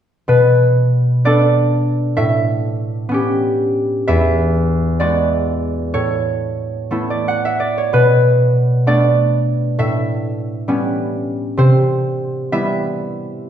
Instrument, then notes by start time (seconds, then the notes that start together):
harp
0.28 B2 B4
1.25 B3 D4 A4 D5
2.17 A2 E5
3.09 B3 C#4
3.14 G4
4.08 E2 E5
5.00 G#3 B3 F#4 D5
5.94 A2 C#5
6.91 A3 B3 E4
7.10 D5
7.28 F#5
7.45 E5
7.60 D5
7.78 C#5
7.93 B2 B4
8.87 A3 B3 D4 D5
9.79 A2 E5
10.68 G3 B3 C#4
11.57 C3 C5
12.52 G3 B3 E4 E5